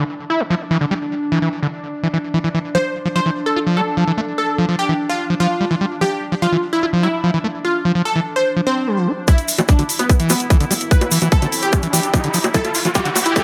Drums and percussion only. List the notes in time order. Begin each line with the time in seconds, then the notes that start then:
9.28 kick, closed hi-hat, high bongo, shaker
9.38 closed hi-hat, shaker
9.48 open hi-hat, shaker
9.58 closed hi-hat, high bongo, shaker
9.68 kick, closed hi-hat, shaker
9.79 closed hi-hat, high bongo, shaker
9.89 open hi-hat, shaker
9.99 closed hi-hat, high bongo, shaker
10.09 kick, closed hi-hat, shaker
10.20 closed hi-hat, shaker
10.29 open hi-hat, high bongo, shaker
10.40 closed hi-hat, shaker
10.50 kick, closed hi-hat, high bongo, shaker
10.60 closed hi-hat, shaker
10.71 open hi-hat, high bongo, shaker
10.80 closed hi-hat, shaker
10.91 kick, closed hi-hat, shaker
11.01 closed hi-hat, high bongo, shaker
11.11 open hi-hat, shaker
11.22 closed hi-hat, high bongo, shaker
11.32 kick, closed hi-hat, shaker
11.42 closed hi-hat, high bongo, shaker
11.52 open hi-hat, shaker
11.63 closed hi-hat, shaker
11.73 kick, closed hi-hat, high bongo, shaker
11.83 closed hi-hat, shaker
11.93 open hi-hat, high bongo, shaker
12.03 closed hi-hat, shaker
12.14 kick, closed hi-hat, high bongo, shaker
12.24 closed hi-hat, shaker
12.34 open hi-hat, shaker
12.44 closed hi-hat, high bongo, shaker
12.54 kick, closed hi-hat, shaker
12.64 closed hi-hat, high bongo, shaker
12.74 open hi-hat, shaker
12.85 closed hi-hat, high bongo, shaker
12.95 kick, closed hi-hat, shaker
13.05 closed hi-hat, shaker
13.16 open hi-hat, high bongo, shaker
13.25 closed hi-hat, shaker
13.36 kick, closed hi-hat, high bongo, shaker